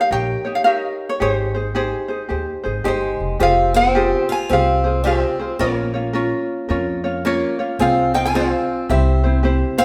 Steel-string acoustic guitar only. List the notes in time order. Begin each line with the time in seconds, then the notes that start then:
2.85 G#3
3.40 C4
3.74 C4
4.29 F4
4.49 C4
5.04 C4
5.59 A#3
7.25 A#3
7.79 C4
8.14 D#4
8.26 F4
8.35 C4
8.90 C4
9.78 C4